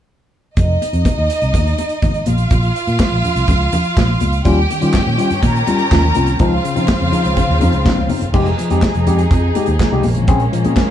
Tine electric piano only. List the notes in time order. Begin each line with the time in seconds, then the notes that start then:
4.45 G3 C#4 F4
4.70 D#3
4.81 G3 C#4 F4
4.94 C#4 F4
5.06 D#3
5.18 G3 C#4 F4
5.42 D#3
5.67 G3 C#4 F4
5.79 C#4 F4
5.91 C#4 F4
6.04 D#3
6.15 C#4 F4
6.40 F3 C4 D#4
6.64 C#3
6.75 F3 C4 D#4
6.88 C4 D#4
7.01 C#3
7.12 F3 C4 D#4
7.37 C#3
7.60 F3 C4 D#4
7.73 C4 D#4
7.85 C4 D#4
7.97 C#3
8.09 C4 D#4
8.34 G#3 D#4 G4
8.59 F3
8.70 G#3 D#4 G4
8.83 D#4 G4
8.95 F3
9.07 G#3 D#4 G4
9.31 F3
9.55 G#3 D#4 G4
9.68 D#4 G4
9.92 G#3 D#4 G4
10.16 A#2 F3
10.28 C4 C#4 G#4
10.53 A#2 F3
10.65 C4 C#4 G#4
10.77 C#4 G#4